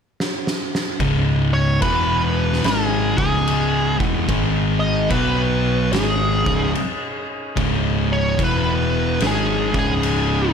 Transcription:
0.20 snare
0.47 snare
0.75 snare
0.99 C#1 C#2 G#2 C#3 G#3 D#4, kick, crash
1.54 C#5
1.81 E1 E2 B2 E3 B3 F#4 B4, kick, crash
2.53 snare
2.63 G#1 G#2 C#3 D#3 G#3 G#4, snare, crash
2.67 D#4
3.16 C#1 C#2 G#2 C#3 G#4, kick
3.47 crash
3.98 E1 E2 B2 E3, kick
4.28 G#1 G#2 D#3 G#3 G#4, kick, crash
4.80 D#5
5.09 B1 B2 F#3 B3 F#4 B4 C#5, kick, crash
5.92 G#1 G#2 D#3 G#3 G#4, snare, crash
5.96 C#4 D#5
6.46 C#1 C#2 G#2 C#3, kick
6.75 crash
7.56 C#1 C#2 G#2 C#3, kick, crash
8.13 C#5
8.38 E1 E2 B2 E3 E4 B4 F#5, kick, crash
8.44 B4
9.20 G#1 G#2 D#3 G#3 C#4 G#4 D#5, snare, crash
9.27 G#4
9.73 C#1 C#2 G#2 C#3, kick
9.79 G#4
10.03 crash

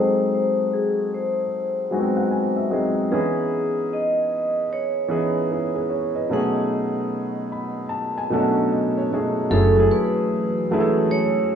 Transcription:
Already playing: F#3 G#3 C4 D#4 F#4 G#4 A4 C5
0.34 C5
0.73 G#4
1.14 C5
1.91 F#3 G#3 B3 D#4 F#4 G#5
1.99 C4
2.17 F#5
2.31 G#5
2.56 E5
2.70 F#3 G#3 C4 D#4 G#4 D#5
3.11 E3 B3 C#4 D#4 G#4
3.93 D#5
4.73 C#5
5.08 E3 B3 C#4 D#4 G#4
5.51 E4 G#4
5.75 G#4 B4
5.90 C#5
6.15 B4 D#5
6.29 B2 F#3 A3 C#4 D#4 G#4 F#5
7.52 B5
7.89 A5
8.18 G#5
8.30 B2 F#3 A3 C#4 D4 A4 F#5
8.40 D#4
8.72 D#5
8.98 C#5
9.12 B2 F#3 A3 C#4 D#4 G#4 C#5
9.50 F#1 E3 F#3 A3 C#4 E4 F#4 G#4 A4
9.77 F#3 A3 C#4 E4 G#4
9.91 B4
10.71 F#3 A3 C#4 E4 G#4
10.80 A4
11.11 C#5

